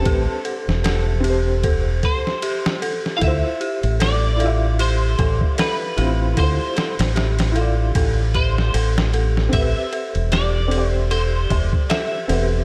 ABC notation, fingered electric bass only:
X:1
M:4/4
L:1/16
Q:"Swing 16ths" 1/4=76
K:Am
V:1 name="Fingered electric bass" clef=bass
A,,, z2 E,,,6- E,,, z6 | D,, z2 A,,,6- A,,, A,,, z3 A,,,2 | D,, z2 A,,,4- A,,, A,,,4 A,,,4 | A,,, z2 E,,,6- E,,, E,,, z3 E,,,2 |]